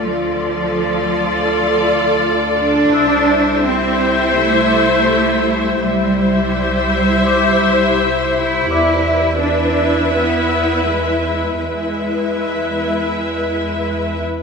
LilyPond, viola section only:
\new Staff \with { instrumentName = "Viola section" } { \time 4/4 \key c \lydian \tempo 4 = 83 <f' a'>1 | <e' c''>1 | <e' c''>1 | <e' b'>1 |
<e' b'>2.~ <e' b'>8 r8 | }